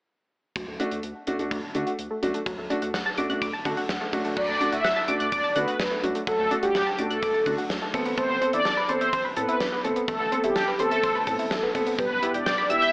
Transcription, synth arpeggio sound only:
0.56 F#3
0.68 A3
0.80 D4
0.92 F#4
1.03 F#5
1.15 A5
1.27 D6
1.51 D6
1.63 A5
1.75 F#5
1.87 F#4
2.11 A3
2.22 F#3
2.34 A3
2.46 F#3
2.58 A3
2.70 D4
2.82 F#4
2.94 F#5
3.06 A5
3.18 D6
3.30 F#6
3.42 D6
3.53 A5
3.65 F#5
3.77 F#4
4.01 A3
4.13 F#3
4.25 A3
4.37 F#3
4.49 A3
4.61 D4
4.73 F#4
4.84 F#5
4.96 A5
5.08 D6
5.20 F#6
5.32 D6
5.44 A5
5.56 F#5
5.68 F#4
5.91 A3
6.03 F#3
6.15 A3
6.27 F#3
6.39 A3
6.51 D4
6.63 F#4
6.75 F#5
6.87 A5
6.99 D6
7.10 F#6
7.22 D6
7.34 A5
7.46 F#5
7.58 F#4
7.82 A3
7.94 A3
8.06 B3
8.18 A3
8.30 B3
8.41 C4
8.53 E4
8.65 A4
8.77 B4
8.89 C5
9.01 E5
9.13 C5
9.25 B4
9.37 A4
9.49 E4
9.72 B3
9.84 A3
9.96 B3
10.08 A3
10.20 B3
10.32 C4
10.44 E4
10.56 A4
10.68 B4
10.80 C5
10.92 E5
11.03 C5
11.15 B4
11.27 A4
11.39 E4
11.63 B3
11.75 A3
11.87 B3
11.99 G3
12.11 B3
12.22 E4
12.34 G4
12.46 G5
12.58 B5
12.70 E6
12.82 G6

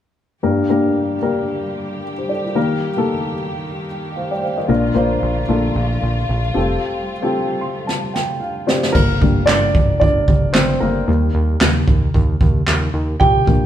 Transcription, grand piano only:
0.43 G2 A#3 D4 G4 A#4
0.69 A#3 D4 G4 A#4
1.22 A#3 D4 G4 A#4
2.18 G4 C5
2.29 A4 D5
2.44 F4 A#4
2.55 D#3 A#3 D#4 G4 A#4
2.97 A#3 D#4 G4 A4
4.16 C5 F5
4.31 D5 G5
4.42 C5 F5
4.57 A#4 D#5
4.68 A#2 A#3 D4 F4 A#4
4.94 A#3 D4 F4 C5
5.48 A#3 D4 F4 A4
6.54 C4 F4 G4 A4
7.22 C4 F4 G4 A4
7.61 C6
7.87 A5
8.14 G5
8.40 F5
8.67 C4 F4 G4 C5 D5
8.93 A#3 A#4
9.21 D3 G3 A#3
9.46 D4 D5
10.00 D4 D5
10.53 C4 C5
10.80 A#3 A#4
11.07 D#3 G3 A#3
13.20 G4 G5
13.46 D3 F3 A#3

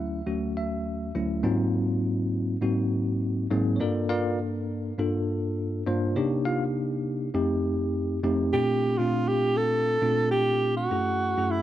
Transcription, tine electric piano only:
Already playing: D2 F#3 A3 C#4 E4 E5
0.26 D2 F#3 A3 C#4 F#4
0.57 E5
1.15 D2 F#3 A3 C#4 E4
1.43 G#2 F#3 A#3 C4 D#4 F4
2.62 G#2 F#3 A#3 C4 D#4 F#4
3.51 G#2 F#3 A#3 C4 D#4 G#4
3.76 G2 A#3 D4 C#5
3.80 F4 A4 A#4 D5
4.09 F4 A#4 D5 F5
4.98 G2 A#3 D4 F4 A4
5.86 G2 A#3 D4 F4 C5
6.16 C3 A#3 C#4 D4 D#4 G4 C#5
6.45 F4 F5
7.34 F2 A3 C4 D#4 G4
8.23 F2 A3 C4 D#4 G4
8.53 A#2 A3 C4 D4 F4
8.99 A#2 A3 C4 D4 F4
10.01 A#2 A3 C4 D4 F4
10.91 F#2 A3 C#4 E4 G#4
11.37 F#2 A3 C#4 E4 G#4

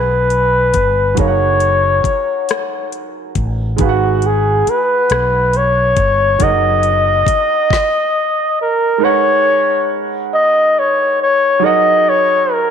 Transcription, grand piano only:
Already playing: G#3 D#4 G#4 B4 F#5
1.15 F#3 D#4 G#4
1.20 A#4 F5
1.27 F#5
3.76 G#3 D#4 G#4
3.81 B4 F5
3.89 F#5
6.39 F#3 D#4 G#4 A#4 F#5
8.98 G#3 D#4 A#4
9.03 B4 F#5
11.59 F#3 D#4 G#4
11.64 A#4 F#5

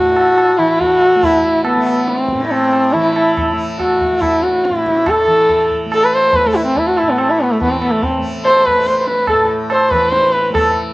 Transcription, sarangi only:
Already playing: F#4
0.58 E4
0.80 F#4
1.24 E4
1.66 B3
2.09 C4
2.46 E4
2.51 C4
2.93 E4
3.15 E4
3.79 F#4
4.21 E4
4.43 F#4
4.65 E4
5.08 A4
5.94 A4
6.04 B4
6.15 C5
6.36 B4
6.46 A4
6.56 E4
6.66 C4
6.78 E4
6.87 F#4
6.98 E4
7.09 B3
7.19 C4
7.30 E4
7.41 B3
7.52 A3
7.62 B3
7.71 C4
7.81 B3
7.91 A3
8.03 C4
8.45 C5
8.65 B4
8.87 C5
9.01 C5
9.07 B4
9.29 A4
9.72 C5
9.91 B4
10.10 C5
10.32 B4
10.54 A4

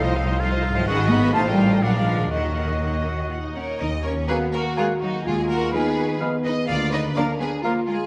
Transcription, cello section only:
Already playing: F3
0.76 F3
0.87 D#3
1.11 B3
1.35 A3
1.47 G3
1.83 F#3
1.96 F3
2.32 D#3
3.56 C#4
3.80 D#4
4.06 C#4
4.30 B3
4.54 A#3
4.79 G#3
5.03 F#3
5.27 G#3
5.51 A#3
5.74 B3
6.45 D#4
6.69 F4
6.93 D#4
7.16 D4
7.40 B3
7.63 A#3
7.87 G#3

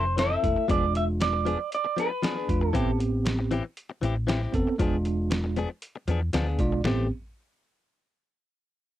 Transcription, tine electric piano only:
0.43 A3 E4 A4
0.68 G#3 D4 F4
2.49 G#3 D4 F4
2.74 B3 C4 G4
4.53 B3 C4 A4
4.78 G#3 D4 F4
6.34 F5
6.59 G#3 D4 F4 D5
6.85 B3 C4 G4

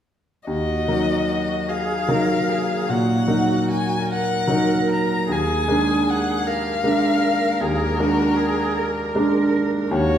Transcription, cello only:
0.47 F#4
1.68 G#4
2.11 A#4
2.49 G#4
2.89 F#4
4.06 A#4
5.31 G#4
6.47 A#4
7.61 G#4
7.98 F#4
8.36 G#4
8.77 A#4
9.91 F#4

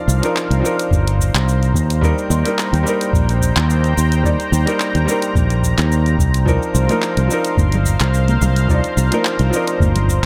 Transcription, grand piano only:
Already playing: F3 C4 D4 D#4 A#4 D5
0.22 F3 C4 D4 D#4 A#4
0.60 F3 C4 D4
0.65 D#4 A#4
2.01 G3 A#3 D4 D#4 A#4
2.44 G3 A#3 D4 D#4 A#4
2.83 G3 A#3 D4
2.88 D#4 A#4
4.23 G3 A#3 D4 D#4 D5
4.66 G3 A#3 D4 D#4 A#4
5.05 G3 A#3 D4
5.09 D#4 A#4
6.45 F3 C4 D4 D#4 A#4
6.88 F3 C4 D4 D#4 A#4
7.28 F3 C4 D4
7.32 D#4 A#4
8.68 F3 C4 D4 D#4 D5
9.11 F3 C4 D4 D#4 A#4
9.50 F3 C4 D4
9.55 D#4 A#4

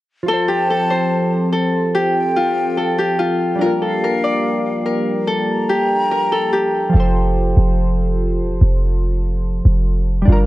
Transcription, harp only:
0.28 A4
0.48 G4
0.70 A4
0.90 C5
1.53 A4
1.95 G4
2.36 F4
2.77 A4
2.99 G4
3.19 F4
3.61 A#4
3.82 A4
4.04 A#4
4.24 D5
4.86 A#4
5.27 A4
5.69 G4
6.11 A#4
6.32 A4
6.53 G4

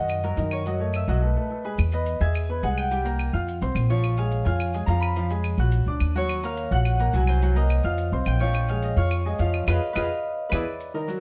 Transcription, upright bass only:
Already playing: F#2
0.37 F#2
1.08 B1
1.78 E2
2.21 E2
2.63 C2
3.33 F2
3.62 C2
3.75 A#1
4.46 F2
4.87 F2
5.58 A#1
5.86 C#2
6.00 D#2
6.71 A#1
7.13 C2
7.84 F2
8.12 C2
8.26 A#1
8.96 F2
9.39 F2
9.67 F2
9.96 F2
10.52 E2

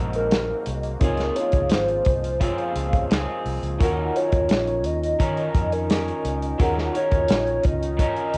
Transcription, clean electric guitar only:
Already playing: G#2 D#3 F#3 C4 D#4 A#4
1.01 G#3 F4 G#4
2.40 C#3 G#3 C4 F4 G#4
3.10 G#3 C4 F4 G#4
3.79 D#3 F#3 C#4
3.83 D#4 A#4
5.19 D#3 C#4 D#4 A#4
5.90 C#4 D#4 A#4
6.58 D#3 F#3 C#4 D#4 A#4
6.94 C#4 D#4 A#4
7.97 D#3 F#3 C#4 D#4
8.02 A#4

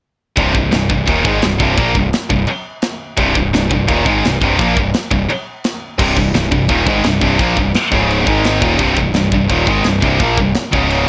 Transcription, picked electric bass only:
0.38 C1
0.54 C1
0.74 C1
0.90 C1
1.07 D#1
1.25 G#1
1.44 C1
1.60 C1
1.78 A#1
1.95 C1
2.30 C1
2.48 muted picked electric bass stroke
3.17 C1
3.35 C1
3.54 C1
3.71 C1
3.89 D#1
4.06 G#1
4.25 C1
4.42 C1
4.59 A#1
4.76 C1
5.11 C1
5.29 muted picked electric bass stroke
5.99 C1
6.17 C1
6.35 C1
6.52 C1
6.69 D#1
6.86 G#1
7.04 C1
7.21 C1
7.40 A#1
7.56 C1
7.92 C#1
8.27 G#1
8.62 D#1
8.79 C1
8.97 C1
9.12 C1
9.32 C1
9.50 D#1
9.67 G#1
9.85 C1
10.02 C1
10.20 A#1
10.37 C1
10.73 C#1

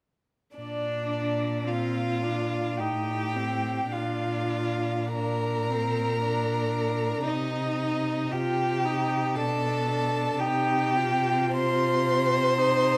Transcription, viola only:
0.56 D4
1.68 C4
2.23 D4
2.79 D#4
3.36 C4
3.93 D4
5.14 D4
5.70 C4
6.23 D4
7.29 D#4
8.32 F4
8.84 D#4
9.36 D4
9.88 D4
10.40 D#4
10.96 F4
12.57 D#4

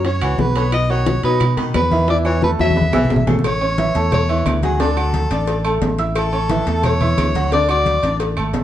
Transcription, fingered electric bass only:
Already playing: F#2
0.22 C#2
0.39 B1
1.24 B2
1.75 E2
2.60 E2
2.94 B1
3.11 A1
3.95 E2
4.46 D2
5.31 A1
5.82 A1
6.67 E2
7.18 D2
8.03 A1
8.37 G#1
8.54 A1

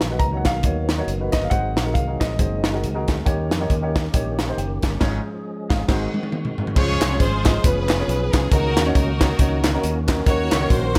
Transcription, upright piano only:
Already playing: B2
0.11 D#4 F#4 A#4 B4
0.32 D#4 F#4 A#4 C#5
0.64 D#4 F#4 A#4 C#5
0.98 D#4 F#4 A#4 C#5
1.20 D#4 F#4 A#4 B4
1.51 G#2 D#4 F#4 G#4 C5
1.85 D#4 F#4 G#4 A#4
2.07 D#4 F#4 G#4 A#4
2.38 D#4 F#4 G#4 C5
2.73 D#4 F#4 G#4 A#4
2.94 D#4 F#4 G#4 A#4
3.25 D#3 D#4 G4 A#4 C#5
3.60 D#4 G4 A#4 C#5
3.82 D#4 G4 A#4 C#5
4.13 D#4 G4 A#4 C#5
4.48 D#4 G4 A#4 C5
4.58 A#4 G5
4.83 C#4 A#4
5.00 G#2 C#4 F4 G#4 C#5
5.70 G#4 F5
5.88 G#2 D#4 F#4 G#4 C5
6.75 C#3 C#4 F4 G#4 C5
7.11 C#4 F4 G#4 C#5
7.46 C#4 F4 G#4 D#5
7.64 C#4 F4 G#4 B4
7.99 C#4 F4 G#4 C#5
8.33 C#4 F4 G#4 B4
8.52 C#3 C#4 D#4 F#4 A#4
8.86 C#4 D#4 F#4 C#5
9.20 C#4 D#4 F#4 A#4
9.39 C#4 D#4 F#4 C#5
9.73 C#4 D#4 F#4 A#4
10.07 C#4 D#4 F#4 A#4
10.26 D#3 C#4 D#4 F#4 A#4
10.61 C#4 D#4 F#4 C#5
10.95 C#4 D#4 F#4

